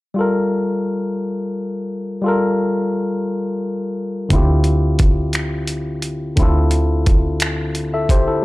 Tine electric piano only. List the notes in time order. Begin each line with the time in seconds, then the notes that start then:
0.14 G3 F4
0.19 A4 A#4
2.22 G3 F4
2.26 A4 A#4
4.29 D3 C4 E4
4.34 F4 G4
6.36 D3 C4 E4
6.41 F4 A4
7.94 A4 E5
8.11 G4 C5
8.28 E4 A4